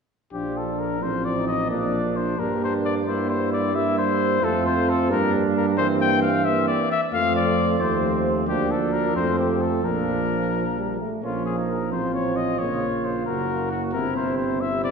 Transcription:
0.32 1.03 A#1 soft
0.32 0.98 F3 soft
0.32 0.98 D4 soft
0.32 0.97 F4 soft
0.32 0.59 G4 medium
0.57 0.81 A4 soft
0.80 1.04 A#4 medium
1.01 1.69 A1 medium
1.01 1.69 F3 soft
1.01 1.71 C4 soft
1.01 1.38 F4 soft
1.01 1.26 C5 medium
1.24 1.47 D5 medium
1.37 1.71 D#4 soft
1.47 1.70 D#5 medium
1.70 2.37 A#1 medium
1.70 2.41 F3 soft
1.70 2.38 A#3 soft
1.70 2.38 D4 soft
1.70 2.18 D5 medium
2.17 2.40 C5 medium
2.38 4.38 G2 medium
2.38 3.07 G3 medium
2.38 3.05 A#3 soft
2.38 3.09 D4 soft
2.38 2.62 A#4 medium
2.64 2.73 C5 medium
2.85 2.95 D5 medium
3.06 3.74 G3 medium
3.06 3.73 A#3 soft
3.06 3.73 E4 medium
3.06 3.29 C5 medium
3.29 3.52 C5 medium
3.53 3.77 D5 medium
3.74 4.41 G3 medium
3.74 4.41 A#3 medium
3.74 4.43 E4 medium
3.74 3.97 E5 medium
3.98 4.45 C5 medium
4.41 5.12 F2 medium
4.41 5.12 A3 medium
4.41 5.11 C4 soft
4.41 5.11 F4 medium
4.41 4.66 A4 medium
4.66 4.91 C5 medium
4.89 5.11 A4 medium
5.10 6.84 G2 medium
5.10 5.80 G3 medium
5.10 5.77 A#3 medium
5.10 5.79 D4 medium
5.10 5.33 A#4 medium
5.57 5.66 A#4 medium
5.77 6.45 E3 medium
5.77 6.28 A#3 medium
5.77 6.44 C4 medium
5.77 5.87 C5 medium
6.01 6.21 G5 medium
6.22 6.46 F5 medium
6.44 6.88 E3 medium
6.44 6.88 A#3 medium
6.44 6.87 C4 medium
6.44 6.67 E5 medium
6.67 6.89 D5 medium
6.92 7.01 E5 medium
7.11 7.76 F2 medium
7.11 7.76 F3 medium
7.11 7.76 A3 medium
7.11 7.75 C4 medium
7.11 7.35 F5 medium
7.36 7.82 D5 medium
7.78 8.49 D#2 medium
7.78 8.46 F3 medium
7.78 8.49 A3 soft
7.78 8.45 C4 medium
7.78 8.25 C5 medium
8.47 9.17 D2 medium
8.47 9.15 F3 medium
8.47 9.17 A#3 medium
8.47 9.17 D4 medium
8.47 8.73 G4 medium
8.71 8.94 A4 medium
8.92 9.15 A#4 medium
9.15 9.84 F2 soft
9.15 9.84 F3 medium
9.15 9.84 A3 soft
9.15 9.83 C4 soft
9.15 9.38 C5 medium
9.39 9.63 G4 medium
9.61 9.86 A4 medium
9.83 10.98 A#1 soft
9.83 10.48 F3 soft
9.83 10.98 A#3 soft
9.83 10.97 D4 soft
9.83 11.00 A#4 medium
10.53 10.64 F3 medium
10.76 10.99 G3 medium
11.00 11.23 A3 soft
11.23 11.94 A#1 soft
11.23 11.88 F3 soft
11.23 11.94 A#3 soft
11.23 11.60 C#4 soft
11.23 11.45 F4 medium
11.45 11.56 G#4 medium
11.58 11.94 D#4 soft
11.69 11.91 A#4 medium
11.92 12.60 A1 soft
11.92 12.59 F3 soft
11.92 12.60 C4 soft
11.92 12.59 F4 soft
11.92 12.13 C5 medium
12.13 12.38 C#5 medium
12.36 12.60 D#5 medium
12.59 13.27 A#1 soft
12.59 13.27 C#3 soft
12.59 13.27 A#3 soft
12.59 13.27 F4 soft
12.59 13.07 C#5 medium
13.05 13.25 C5 medium
13.26 13.96 F#1 soft
13.26 13.97 C#3 soft
13.26 13.97 A#3 soft
13.26 13.94 F#4 soft
13.26 13.70 A#4 medium
13.71 13.81 F#4 medium
13.92 14.91 G1 soft
13.92 14.63 C3 soft
13.92 14.62 C4 soft
13.92 14.61 E4 soft
13.92 14.16 A#4 medium
14.16 14.36 C5 medium
14.37 14.62 C5 medium
14.61 14.91 C3 soft
14.61 14.91 C4 soft
14.61 14.91 E4 soft
14.61 14.83 E5 medium
14.84 14.91 D5 medium

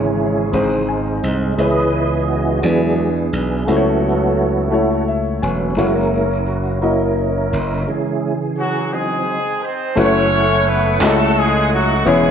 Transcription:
0.00 0.49 G#1 medium
0.00 0.49 G#2 soft
0.00 0.85 C#3 medium
0.00 0.85 E3 medium
0.00 0.16 G#3 medium
0.00 0.49 G#3 medium
0.00 0.17 C#4 medium
0.00 0.49 C#4 soft
0.00 0.17 E4 medium
0.00 0.50 E4 medium
0.00 0.84 G#4 medium
0.00 0.21 C#5 medium
0.52 1.19 G#1 medium
0.52 1.54 G#2 medium
0.52 1.21 G#3 medium
0.52 1.55 G#3 soft
0.52 1.22 C4 medium
0.52 1.55 C4 soft
0.52 1.22 D#4 medium
0.52 1.55 D#4 medium
0.52 1.22 C5 medium
0.88 1.54 G#5 medium
1.23 1.56 C2 medium
1.58 2.59 C#2 medium
1.58 2.59 C#3 soft
1.58 2.59 E3 soft
1.58 2.26 G#3 medium
1.58 2.60 B3 soft
1.58 2.26 C#4 medium
1.58 2.27 E4 medium
1.58 2.60 E4 medium
1.58 2.60 G#4 medium
1.58 2.24 B4 medium
1.58 2.27 B4 medium
1.58 2.60 D#5 medium
2.22 2.29 F4 medium
2.29 2.65 F#4 medium
2.62 3.29 E2 medium
2.62 3.64 E3 medium
2.62 3.10 F#3 soft
2.62 3.31 G#3 medium
2.62 3.10 G#3 soft
2.62 3.65 B3 medium
2.62 3.31 D4 medium
2.62 3.65 D4 medium
2.62 3.32 E4 soft
2.62 3.72 G#4 medium
2.62 3.32 B4 medium
3.33 3.65 B1 medium
3.66 5.39 C#2 medium
3.66 4.69 C#3 medium
3.66 4.68 F#3 soft
3.66 4.36 A3 medium
3.66 4.69 B3 soft
3.66 4.69 C#4 medium
3.66 4.36 E4 medium
3.66 5.04 E4 medium
3.66 5.04 F#4 medium
3.66 4.37 F#4 medium
3.66 5.05 A4 medium
3.66 3.76 C5 medium
3.76 4.40 C#5 medium
4.71 5.40 A3 medium
4.71 5.41 E4 medium
4.71 5.41 F#4 medium
4.71 5.41 C#5 medium
5.08 5.41 E5 medium
5.42 5.75 E1 medium
5.42 5.74 F#3 soft
5.42 5.74 B3 soft
5.42 5.74 C#4 soft
5.42 5.75 G#5 medium
5.77 7.49 F#1 medium
5.77 6.24 G#3 medium
5.77 6.45 A#3 medium
5.77 6.24 A#3 soft
5.77 6.79 C#4 medium
5.77 6.46 E4 medium
5.77 6.25 E4 medium
5.77 6.46 F#4 medium
5.77 6.50 A#4 medium
5.77 6.46 C#5 medium
6.47 6.80 F#4 medium
6.81 7.50 A#3 medium
6.81 7.83 C#4 medium
6.81 7.50 E4 medium
6.81 7.84 E4 medium
6.81 7.51 F#4 medium
6.81 7.90 A#4 medium
6.81 7.51 D#5 medium
7.53 7.85 F#1 medium
7.87 9.24 C#3 medium
7.87 9.24 E3 soft
7.87 8.34 G#3 medium
7.87 8.34 C#4 soft
7.87 8.34 E4 medium
7.87 9.24 G#4 medium
8.58 8.90 F#3 medium
8.58 8.90 F#4 medium
8.93 9.39 F#3 soft
8.93 9.63 G#3 medium
8.93 9.39 C4 soft
8.93 9.64 C4 medium
8.93 9.40 D#4 soft
8.93 9.94 D#4 medium
8.93 9.63 G#4 medium
9.64 9.98 C4 medium
9.64 9.98 C5 medium
9.95 10.98 F#1 medium
9.95 10.64 A3 medium
9.95 12.05 A3 medium
9.95 10.64 C#4 medium
9.95 10.67 C#4 medium
9.95 10.65 E4 medium
9.95 12.31 E4 medium
9.95 10.99 E4 medium
9.95 10.65 F#4 medium
9.95 10.99 A4 medium
9.95 10.04 B4 medium
9.95 10.67 C#5 loud
9.95 12.05 F#5 medium
9.95 12.31 C#6 medium
10.04 10.69 C#5 medium
10.68 11.02 B3 medium
10.68 11.02 B4 medium
11.00 12.02 C#2 loud
11.00 11.07 G#3 medium
11.00 11.69 C#4 medium
11.00 11.70 E4 medium
11.00 11.70 F#4 medium
11.00 11.70 D#5 medium
11.00 clap medium
11.05 11.38 A3 loud
11.05 11.72 A3 medium
11.05 11.38 A4 loud
11.39 11.73 G#3 medium
11.39 11.73 G#4 medium
11.73 12.05 F#3 medium
11.73 12.05 F#4 medium
12.05 12.31 E1 medium
12.05 12.31 E3 medium
12.05 12.31 G#3 medium
12.05 12.31 B3 medium
12.05 12.31 C#4 medium
12.05 12.31 E4 medium
12.05 12.31 G#4 medium
12.05 12.31 B4 medium
12.05 12.31 C#5 medium
12.05 12.31 G#5 medium

